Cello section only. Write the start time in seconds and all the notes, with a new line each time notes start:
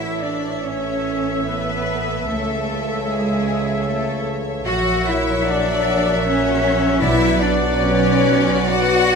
Already playing: E4
0.24 D4
0.65 C#4
1.47 B3
2.29 A3
3.08 G#3
3.86 A3
4.66 F#4
5.07 E4
5.48 D4
6.25 C#4
7.01 E4
7.40 D4
7.81 C#4
8.68 F#4